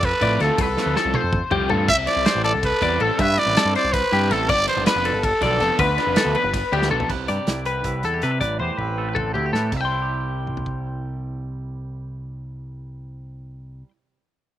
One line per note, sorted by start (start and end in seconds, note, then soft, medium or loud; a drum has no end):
0.00 0.12 F2 medium
0.00 0.22 A4 medium
0.00 kick loud
0.00 ride loud
0.05 0.41 B4 loud
0.21 0.39 A2 loud
0.21 0.39 F3 medium
0.21 0.39 A3 medium
0.21 0.40 C4 loud
0.21 0.40 F4 loud
0.21 0.41 D5 medium
0.21 kick medium
0.21 ride medium
0.40 0.49 D2 medium
0.40 0.65 F3 medium
0.40 0.65 A3 medium
0.40 0.65 C4 medium
0.40 0.65 F4 medium
0.40 0.61 A4 medium
0.40 0.59 A4 medium
0.40 snare soft
0.40 ride medium
0.58 0.76 C2 loud
0.58 1.41 A4 medium
0.58 0.96 B4 loud
0.58 kick loud
0.58 ride loud
0.77 0.94 F3 medium
0.77 0.95 A3 medium
0.77 0.95 C4 loud
0.77 0.95 F4 loud
0.77 snare medium
0.86 0.95 D2 medium
0.95 1.20 F3 medium
0.95 1.20 A3 medium
0.95 1.20 C4 medium
0.95 1.20 F4 medium
0.95 1.15 A4 medium
0.95 snare medium
1.05 1.14 C2 loud
1.14 1.52 C5 medium
1.14 high tom medium
1.24 1.41 F2 loud
1.33 kick loud
1.33 mid tom medium
1.51 1.69 C2 medium
1.51 1.68 F3 medium
1.51 1.69 A3 medium
1.51 1.69 C4 medium
1.51 1.69 F4 loud
1.51 1.71 G4 medium
1.51 mid tom medium
1.69 1.88 G2 medium
1.69 1.89 F3 medium
1.69 1.89 A3 medium
1.69 1.89 C4 medium
1.69 1.89 F4 medium
1.69 1.89 A4 medium
1.69 floor tom loud
1.88 2.06 C2 medium
1.88 1.97 E5 loud
1.88 2.26 E5 loud
1.88 kick loud
1.88 crash loud
1.88 ride loud
2.07 2.24 C3 medium
2.07 2.25 G3 medium
2.07 2.24 C4 medium
2.07 2.25 E4 loud
2.07 2.42 D5 loud
2.07 snare soft
2.07 ride medium
2.16 2.25 C2 medium
2.25 2.50 C3 medium
2.25 2.50 G3 medium
2.25 2.50 C4 medium
2.25 2.51 E4 medium
2.25 2.44 C5 medium
2.25 snare loud
2.25 ride loud
2.35 2.53 A1 medium
2.44 2.82 A4 medium
2.44 2.53 D5 loud
2.44 ride medium
2.54 2.72 C2 medium
2.63 3.04 B4 loud
2.63 kick loud
2.63 ride loud
2.81 2.99 E2 medium
2.81 2.98 C3 medium
2.81 2.98 G3 medium
2.81 2.99 C4 medium
2.81 2.99 E4 loud
2.81 3.01 D5 medium
2.81 kick medium
2.81 snare soft
2.81 ride medium
2.99 3.09 A1 medium
2.99 3.24 C3 medium
2.99 3.24 G3 medium
2.99 3.25 C4 medium
2.99 3.25 E4 medium
2.99 3.20 A4 medium
2.99 3.21 A4 medium
2.99 ride medium
3.19 3.37 G2 loud
3.19 3.57 B4 loud
3.19 3.40 E5 loud
3.19 kick loud
3.19 ride loud
3.38 3.55 C3 medium
3.38 3.55 G3 loud
3.38 3.55 C4 loud
3.38 3.56 E4 loud
3.38 3.75 D5 loud
3.38 snare soft
3.38 ride medium
3.46 3.55 A1 medium
3.56 3.80 C3 medium
3.56 3.81 G3 medium
3.56 3.81 C4 medium
3.56 3.81 E4 medium
3.56 3.75 A4 medium
3.56 snare loud
3.56 ride loud
3.65 3.74 G2 loud
3.75 4.13 C5 medium
3.75 3.94 D5 loud
3.75 snare soft
3.75 ride medium
3.84 4.02 C2 loud
3.93 4.33 B4 loud
3.93 kick loud
3.93 snare soft
3.93 ride loud
4.12 4.30 G2 medium
4.12 4.29 C3 medium
4.12 4.30 G3 medium
4.12 4.30 C4 loud
4.12 4.30 E4 loud
4.12 4.32 G4 medium
4.12 snare soft
4.12 ride medium
4.31 4.48 A1 loud
4.31 4.49 C3 medium
4.31 4.50 G3 medium
4.31 4.50 C4 medium
4.31 4.50 E4 medium
4.31 4.50 A4 medium
4.31 4.51 A4 medium
4.31 snare soft
4.31 ride medium
4.49 4.67 G1 medium
4.49 4.87 D5 loud
4.49 4.68 D5 loud
4.49 kick loud
4.49 crash loud
4.67 4.85 D3 medium
4.67 4.85 F3 medium
4.67 4.86 B3 medium
4.67 4.86 D4 loud
4.67 4.85 C5 medium
4.67 ride medium
4.77 4.86 G1 medium
4.86 5.11 D3 medium
4.86 5.11 F3 medium
4.86 5.11 B3 medium
4.86 5.11 D4 medium
4.86 5.26 B4 medium
4.86 5.05 B4 medium
4.86 snare loud
4.86 ride loud
4.96 5.13 F1 medium
5.05 5.42 A4 medium
5.05 ride medium
5.14 5.31 G1 medium
5.23 5.43 A4 medium
5.23 kick loud
5.23 ride loud
5.41 5.59 B1 loud
5.41 5.60 D3 medium
5.41 5.60 F3 medium
5.41 5.60 B3 loud
5.41 5.60 D4 loud
5.41 5.82 A4 medium
5.41 5.61 D5 medium
5.41 kick medium
5.41 snare soft
5.41 ride medium
5.60 5.69 F1 medium
5.60 5.85 D3 medium
5.60 5.85 F3 medium
5.60 5.86 B3 medium
5.60 5.86 D4 medium
5.60 5.80 A4 medium
5.60 snare soft
5.60 ride medium
5.79 5.97 D2 loud
5.79 6.17 B4 loud
5.79 6.92 B4 medium
5.79 kick loud
5.79 ride loud
5.98 6.15 D3 medium
5.98 6.15 F3 medium
5.98 6.16 B3 medium
5.98 6.16 D4 loud
5.98 snare soft
5.98 ride medium
6.07 6.16 F1 medium
6.16 6.41 D3 medium
6.16 6.41 F3 medium
6.16 6.41 B3 medium
6.16 6.41 D4 medium
6.16 6.36 A4 medium
6.16 snare loud
6.16 ride loud
6.25 6.35 D2 loud
6.35 6.73 B4 medium
6.35 ride medium
6.44 6.62 G1 medium
6.54 kick loud
6.54 snare soft
6.54 ride loud
6.72 6.90 D2 medium
6.72 6.91 D3 medium
6.72 6.91 F3 medium
6.72 6.91 B3 medium
6.72 6.91 D4 loud
6.72 6.90 G4 medium
6.72 ride medium
6.82 snare medium
6.91 7.09 B1 medium
6.91 7.10 D3 medium
6.91 7.11 F3 medium
6.91 7.11 B3 medium
6.91 7.11 D4 medium
6.91 7.10 A4 medium
7.00 floor tom medium
7.09 7.27 C2 medium
7.09 8.23 C3 medium
7.09 7.66 B4 medium
7.09 kick medium
7.09 crash medium
7.28 7.38 G2 medium
7.28 8.04 G4 medium
7.28 7.66 D5 medium
7.28 closed hi-hat medium
7.47 7.82 C2 medium
7.47 7.85 E4 medium
7.47 snare loud
7.47 closed hi-hat medium
7.65 8.97 G3 soft
7.65 8.24 B4 soft
7.65 8.04 B4 medium
7.65 closed hi-hat medium
7.84 8.02 C2 medium
7.84 8.04 E4 soft
7.84 kick medium
7.84 closed hi-hat medium
8.03 8.21 E2 medium
8.03 8.14 E4 medium
8.03 8.23 A4 medium
8.03 closed hi-hat medium
8.14 8.42 G4 soft
8.22 8.40 C3 medium
8.22 8.31 A4 soft
8.22 8.40 B4 medium
8.22 snare soft
8.22 closed hi-hat medium
8.31 8.41 B4 soft
8.41 8.59 A1 medium
8.41 9.72 A2 medium
8.41 8.98 B4 medium
8.41 8.59 D5 medium
8.41 kick medium
8.41 closed hi-hat medium
8.59 8.69 E2 medium
8.59 9.36 G4 medium
8.59 8.78 C5 medium
8.59 high tom soft
8.78 9.14 A1 medium
8.78 9.17 C4 medium
8.78 9.16 B4 medium
8.78 kick soft
8.98 9.71 A3 soft
8.98 9.09 A4 soft
9.09 9.54 B4 soft
9.15 9.34 A1 medium
9.15 9.92 C4 soft
9.15 9.34 A4 medium
9.15 kick loud
9.15 mid tom medium
9.34 9.52 D2 medium
9.34 9.46 E4 medium
9.34 9.53 G4 medium
9.34 floor tom medium
9.46 9.74 G4 soft
9.53 9.71 A2 medium
9.53 9.71 E3 medium
9.53 9.73 A4 medium
9.53 9.72 B4 soft
9.53 snare medium
9.72 13.82 C2 medium
9.72 13.86 C3 medium
9.72 kick medium
9.72 crash medium
9.77 9.81 E5 medium
9.81 13.91 G3 soft
9.81 13.90 G5 medium
9.85 13.89 C6 medium
9.92 13.96 E4 medium
10.02 14.01 G4 soft
10.47 mid tom medium
10.57 floor tom medium
10.66 kick medium